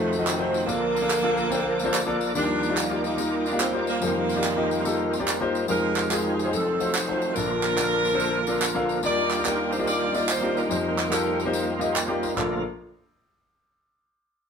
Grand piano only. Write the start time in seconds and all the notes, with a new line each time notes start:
Already playing: F1 F2 A3 D#4 F4 F#4 C5
0.17 A3 D#4 F4 F#4 D#5
0.38 A3 D#4 F4 F#4 C5
0.67 A#1 A#2 A#3 D4 F4 A4 D5
1.02 A#3 D4 F4 A4 D5
1.23 A#3 D4 F4 A4 F5
1.37 A#5
1.50 A#3 D4 F4 A4 C5 G5
1.64 F5
1.83 A#3 D4 F4 A4 C5
1.93 D5
2.06 A#3 D4 F4 A4 D5
2.35 D#2 D#3 A#3 D#4 F4 G4 D5
2.69 A#3 D#4 F4 G4 D5
2.90 A#3 D#4 F4 G4 D5
3.17 A#3 D#4 F4 G4 A#4
3.51 A#3 D#4 F4 G4 F5
3.72 A#3 D#4 F4 G4 C5
4.01 F1 F2 A#3 D#4 F4 G4 C5
4.35 A#3 D#4 F4 G4 D5
4.56 A#3 D#4 F4 G4 D#5
4.84 A#3 D#4 F4 G4 A4
5.19 A#3 D#4 F4 G4 D5
5.41 A#3 D#4 F4 G4 C5
5.68 F1 F2 G#3 D#4 F4 G4 C5
6.10 G#3 D#4 F4 G4 A#4
6.45 G#3 D#4 F4 G4 C5
6.53 F1 F2
6.80 A3 D#4 F4 F#4 C5
7.08 A3 D#4 F4 F#4 C5
7.36 A#1 A#2 A#3 D4 F4 A4 D5
7.78 A#3 D4 F4 A4 D5
8.13 A#3 D4 F4 A4 C5
8.47 A#3 D4 F4 A4 D5
8.74 A#3 D4 F4 A4 F5
9.03 D#2 D#3 A#3 D#4 F4 G4 D5
9.45 A#3 D#4 F4 G4 D5
9.78 A#3 D#4 F4 G4 D5
10.12 A#3 D#4 F4 G4 D#5
10.41 A#3 D#4 F4 G4 D5
10.69 F1 F2 A#3 D#4 F4 G4 C5
11.10 A#3 D#4 F4 G4 A4
11.45 A#3 D#4 F4 G4 C5
11.79 A#3 D#4 F4 G4 D#5 F5
11.94 G5
12.08 A#3 D#4 F4 G4 D5
12.22 A#5
12.36 A#1 A#3 F4 A4 D5